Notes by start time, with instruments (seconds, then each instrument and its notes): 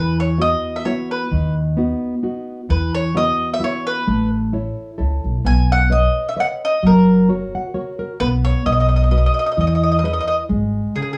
Already playing: upright bass E2, nylon-string guitar E3, mandolin B4
0.20 mandolin C#5
0.38 nylon-string guitar B3 E4 F#4, mandolin D#5
0.76 mandolin E5
0.85 nylon-string guitar B3 E4 F#4, mandolin C#5
1.11 mandolin B4
1.31 upright bass D#2, nylon-string guitar D#3
1.77 nylon-string guitar B3 D#4 F#4
2.23 nylon-string guitar B3 D#4 F#4
2.69 upright bass E2, nylon-string guitar E3, mandolin B4
2.95 mandolin C#5
3.15 nylon-string guitar B3 E4 F#4, mandolin D#5
3.54 mandolin E5
3.59 nylon-string guitar B3 E4 F#4
3.64 mandolin C#5
3.87 mandolin B4
4.07 upright bass A1, nylon-string guitar A3
4.53 nylon-string guitar E4 A4 C#5
4.98 upright bass C#2, nylon-string guitar E4 A4 C#5
5.24 upright bass B1
5.44 upright bass B1, nylon-string guitar B3, mandolin G#5
5.72 mandolin F#5
5.90 nylon-string guitar B4 C#5 D#5, mandolin D#5
6.29 mandolin E5
6.37 nylon-string guitar B4 C#5 D#5, mandolin F#5
6.65 mandolin D#5
6.83 upright bass F#1, nylon-string guitar F#3, mandolin A#4
7.29 nylon-string guitar F#4 A#4 C#5
7.55 nylon-string guitar F#5
7.74 nylon-string guitar F#4 A#4 C#5
7.99 nylon-string guitar A#4
8.20 upright bass B1, nylon-string guitar B3, mandolin B4
8.45 mandolin C#5
8.66 upright bass B1, nylon-string guitar B3, mandolin D#5
8.72 mandolin D#5
8.80 mandolin D#5
8.89 mandolin D#5
8.96 mandolin D#5
9.04 mandolin D#5
9.11 nylon-string guitar F#4 B4 D#5, mandolin D#5
9.18 mandolin D#5
9.26 mandolin D#5
9.34 mandolin D#5
9.39 mandolin D#5
9.46 mandolin D#5
9.52 mandolin D#5
9.57 upright bass E2, nylon-string guitar E3, mandolin D#5
9.67 mandolin D#5
9.75 mandolin D#5
9.83 mandolin D#5
9.92 mandolin D#5
9.99 mandolin D#5
10.03 nylon-string guitar E4 G#4 B4, mandolin D#5
10.13 mandolin D#5
10.20 mandolin D#5
10.28 mandolin D#5
10.49 upright bass G#1, nylon-string guitar G#3
10.96 nylon-string guitar C#3, mandolin G#4
11.02 mandolin G#4
11.13 mandolin G#4